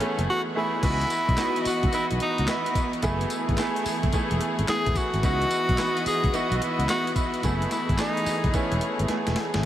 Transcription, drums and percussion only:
0.00 closed hi-hat medium
0.19 closed hi-hat medium
0.83 kick loud
0.83 closed hi-hat medium
0.83 crash loud
0.83 tambourine medium
1.01 closed hi-hat medium
1.10 closed hi-hat medium
1.10 tambourine medium
1.29 kick medium
1.29 closed hi-hat medium
1.38 snare loud
1.38 clap medium
1.38 closed hi-hat medium
1.38 tambourine loud
1.56 closed hi-hat medium
1.65 open hi-hat medium
1.65 tambourine medium
1.83 kick loud
1.83 closed hi-hat soft
1.93 closed hi-hat medium
1.93 tambourine medium
2.11 closed hi-hat medium
2.20 closed hi-hat medium
2.38 closed hi-hat medium
2.48 snare loud
2.48 clap loud
2.48 closed hi-hat medium
2.48 tambourine medium
2.66 closed hi-hat medium
2.75 kick loud
2.75 closed hi-hat medium
2.75 tambourine medium
2.93 closed hi-hat soft
3.02 kick loud
3.02 closed hi-hat medium
3.02 tambourine medium
3.21 closed hi-hat medium
3.30 closed hi-hat medium
3.30 tambourine medium
3.49 kick medium
3.49 closed hi-hat medium
3.58 snare loud
3.58 clap medium
3.58 closed hi-hat medium
3.58 tambourine loud
3.76 closed hi-hat medium
3.86 open hi-hat medium
3.86 tambourine medium
4.03 kick loud
4.03 closed hi-hat medium
4.13 kick loud
4.13 closed hi-hat medium
4.13 tambourine medium
4.31 closed hi-hat medium
4.41 closed hi-hat medium
4.59 closed hi-hat medium
4.68 snare loud
4.68 clap loud
4.68 closed hi-hat medium
4.68 tambourine medium
4.86 kick loud
4.86 closed hi-hat medium
4.95 kick loud
4.95 closed hi-hat medium
4.95 tambourine medium
5.14 closed hi-hat medium
5.23 kick loud
5.23 closed hi-hat medium
5.23 tambourine medium
5.42 closed hi-hat soft
5.51 closed hi-hat medium
5.51 tambourine medium
5.69 kick loud
5.69 closed hi-hat medium
5.78 snare loud
5.78 clap medium
5.78 closed hi-hat medium
5.78 tambourine medium
5.97 closed hi-hat medium
6.06 open hi-hat medium
6.06 tambourine medium
6.24 kick medium
6.24 closed hi-hat medium
6.34 closed hi-hat medium
6.34 tambourine medium
6.52 closed hi-hat medium
6.62 closed hi-hat medium
6.80 closed hi-hat medium
6.89 snare loud
6.89 clap loud
6.89 closed hi-hat medium
6.89 tambourine medium
7.07 closed hi-hat medium
7.16 kick loud
7.16 closed hi-hat medium
7.16 tambourine medium
7.34 closed hi-hat medium
7.43 kick loud
7.43 closed hi-hat medium
7.43 tambourine medium
7.62 closed hi-hat soft
7.71 snare medium
7.71 closed hi-hat medium
7.71 tambourine medium
7.89 kick loud
7.89 closed hi-hat medium
7.99 snare loud
7.99 clap medium
7.99 closed hi-hat medium
7.99 tambourine medium
8.17 closed hi-hat medium
8.26 open hi-hat medium
8.26 tambourine medium
8.44 kick loud
8.44 closed hi-hat soft
8.54 kick loud
8.54 closed hi-hat medium
8.54 tambourine medium
8.72 closed hi-hat medium
8.81 closed hi-hat medium
8.99 closed hi-hat medium
9.08 snare medium
9.08 closed hi-hat medium
9.27 snare medium
9.27 closed hi-hat medium
9.36 snare loud
9.36 open hi-hat medium
9.54 snare loud
9.54 closed hi-hat medium

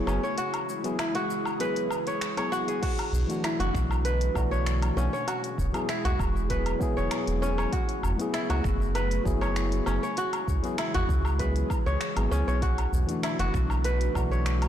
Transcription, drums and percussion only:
0.07 low woodblock medium
0.07 shaker medium
0.24 shaker soft
0.38 closed hi-hat medium
0.38 shaker soft
0.54 closed hi-hat soft
0.54 low woodblock medium
0.54 shaker soft
0.69 shaker medium
0.84 closed hi-hat soft
0.84 shaker soft
0.99 finger snap loud
0.99 closed hi-hat medium
0.99 low woodblock medium
0.99 shaker soft
1.15 closed hi-hat soft
1.15 shaker soft
1.30 shaker medium
1.45 low woodblock medium
1.45 shaker soft
1.60 closed hi-hat medium
1.60 shaker soft
1.76 closed hi-hat soft
1.76 shaker soft
1.91 low woodblock medium
1.91 shaker medium
2.07 closed hi-hat soft
2.07 shaker soft
2.21 finger snap loud
2.21 closed hi-hat medium
2.21 shaker soft
2.37 closed hi-hat soft
2.37 low woodblock medium
2.37 shaker soft
2.53 shaker medium
2.68 closed hi-hat soft
2.68 shaker soft
2.83 kick loud
2.83 closed hi-hat medium
2.83 crash medium
2.83 shaker soft
2.99 closed hi-hat soft
2.99 low woodblock medium
2.99 shaker soft
3.14 udu medium
3.14 shaker medium
3.30 closed hi-hat soft
3.30 shaker soft
3.44 finger snap loud
3.44 closed hi-hat medium
3.44 low woodblock medium
3.44 shaker soft
3.60 closed hi-hat soft
3.60 udu medium
3.60 shaker soft
3.74 finger snap soft
3.74 kick loud
3.74 shaker medium
3.91 low woodblock medium
3.91 shaker soft
4.05 closed hi-hat medium
4.05 shaker soft
4.21 closed hi-hat soft
4.21 shaker soft
4.35 kick loud
4.35 low woodblock medium
4.35 shaker medium
4.53 shaker soft
4.66 finger snap loud
4.66 closed hi-hat medium
4.66 shaker soft
4.82 closed hi-hat soft
4.82 low woodblock medium
4.82 shaker soft
4.98 shaker medium
5.14 shaker soft
5.28 closed hi-hat medium
5.28 low woodblock medium
5.28 shaker soft
5.44 closed hi-hat soft
5.44 shaker soft
5.58 kick medium
5.58 udu medium
5.58 shaker medium
5.74 closed hi-hat soft
5.74 low woodblock medium
5.74 shaker soft
5.89 finger snap loud
5.89 closed hi-hat medium
5.89 shaker soft
6.05 closed hi-hat soft
6.05 udu medium
6.05 shaker soft
6.19 kick loud
6.19 low woodblock medium
6.19 shaker medium
6.37 shaker soft
6.50 kick medium
6.50 closed hi-hat medium
6.50 shaker soft
6.66 closed hi-hat soft
6.66 low woodblock medium
6.66 shaker soft
6.81 kick loud
6.81 shaker medium
6.98 shaker soft
7.11 finger snap loud
7.11 closed hi-hat medium
7.11 low woodblock medium
7.11 shaker soft
7.27 closed hi-hat soft
7.27 shaker soft
7.43 shaker medium
7.58 low woodblock medium
7.58 shaker soft
7.73 kick loud
7.73 closed hi-hat medium
7.73 shaker soft
7.89 closed hi-hat soft
7.89 shaker soft
8.03 udu medium
8.03 low woodblock medium
8.03 shaker medium
8.20 closed hi-hat soft
8.20 shaker soft
8.34 finger snap loud
8.34 closed hi-hat medium
8.34 shaker soft
8.49 closed hi-hat soft
8.49 udu medium
8.49 low woodblock medium
8.49 shaker soft
8.64 finger snap soft
8.64 kick loud
8.64 shaker medium
8.81 shaker soft
8.95 closed hi-hat medium
8.95 low woodblock medium
8.95 shaker soft
9.11 closed hi-hat soft
9.11 shaker soft
9.25 kick loud
9.25 shaker medium
9.42 low woodblock medium
9.42 shaker soft
9.56 finger snap loud
9.56 closed hi-hat medium
9.56 shaker soft
9.72 closed hi-hat soft
9.72 shaker soft
9.86 low woodblock medium
9.86 shaker medium
10.04 shaker soft
10.17 closed hi-hat medium
10.17 shaker soft
10.33 closed hi-hat soft
10.33 low woodblock medium
10.33 shaker soft
10.48 kick medium
10.48 udu medium
10.48 shaker medium
10.64 closed hi-hat soft
10.64 shaker soft
10.78 finger snap loud
10.78 closed hi-hat medium
10.78 low woodblock medium
10.78 shaker soft
10.94 closed hi-hat soft
10.94 udu loud
10.94 shaker soft
11.09 kick loud
11.09 shaker medium
11.25 low woodblock medium
11.25 shaker soft
11.39 kick medium
11.39 closed hi-hat medium
11.39 shaker soft
11.56 closed hi-hat soft
11.56 shaker soft
11.70 kick loud
11.70 low woodblock medium
11.70 shaker medium
11.87 shaker soft
12.01 finger snap loud
12.01 closed hi-hat medium
12.01 shaker soft
12.17 closed hi-hat soft
12.17 low woodblock medium
12.17 shaker soft
12.32 shaker medium
12.48 shaker soft
12.62 kick loud
12.62 closed hi-hat medium
12.62 shaker soft
12.78 closed hi-hat soft
12.78 low woodblock medium
12.78 shaker soft
12.93 udu medium
12.93 shaker medium
13.09 closed hi-hat soft
13.09 shaker soft
13.23 finger snap loud
13.23 closed hi-hat medium
13.23 low woodblock medium
13.23 shaker soft
13.39 closed hi-hat soft
13.39 udu medium
13.39 shaker soft
13.54 finger snap soft
13.54 kick loud
13.54 shaker medium
13.70 low woodblock medium
13.70 shaker soft
13.84 closed hi-hat medium
13.84 shaker soft
14.01 closed hi-hat soft
14.01 shaker soft
14.15 kick loud
14.15 low woodblock medium
14.15 shaker medium
14.32 shaker soft
14.46 finger snap loud
14.46 closed hi-hat medium
14.46 shaker medium
14.62 closed hi-hat soft
14.62 low woodblock medium
14.62 shaker soft

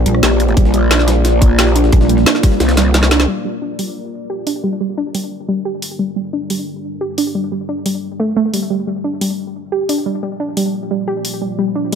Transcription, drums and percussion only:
0.06 closed hi-hat medium
0.15 cross-stick soft
0.23 snare loud
0.23 closed hi-hat medium
0.40 closed hi-hat medium
0.48 closed hi-hat soft
0.57 kick loud
0.57 closed hi-hat medium
0.65 snare soft
0.74 closed hi-hat medium
0.91 snare loud
0.91 closed hi-hat medium
0.99 snare soft
1.08 snare loud
1.08 closed hi-hat medium
1.25 snare loud
1.25 closed hi-hat medium
1.42 kick loud
1.42 closed hi-hat medium
1.59 snare loud
1.59 closed hi-hat medium
1.67 cross-stick soft
1.67 snare soft
1.75 closed hi-hat medium
1.75 closed hi-hat loud
1.84 snare soft
1.92 kick loud
1.92 closed hi-hat medium
2.01 snare medium
2.09 closed hi-hat medium
2.09 closed hi-hat loud
2.18 snare soft
2.26 snare loud
2.26 closed hi-hat medium
2.35 snare soft
2.43 kick loud
2.43 cross-stick soft
2.43 snare soft
2.43 closed hi-hat loud
2.43 open hi-hat medium
2.52 snare soft
2.60 snare loud
2.60 closed hi-hat medium
2.69 snare loud
2.69 closed hi-hat medium
2.77 snare loud
2.77 snare medium
2.77 closed hi-hat medium
2.77 closed hi-hat loud
2.94 snare loud
2.94 snare medium
2.94 closed hi-hat medium
3.03 snare medium
3.11 snare loud
3.11 snare medium
3.11 closed hi-hat medium
3.11 closed hi-hat loud
3.20 snare medium
3.79 open hi-hat medium
4.47 open hi-hat medium
5.15 open hi-hat medium
5.82 open hi-hat medium
6.50 open hi-hat medium
7.18 open hi-hat medium
7.86 open hi-hat medium
8.54 open hi-hat medium
9.21 open hi-hat medium
9.89 open hi-hat medium
10.57 open hi-hat medium
11.25 open hi-hat medium

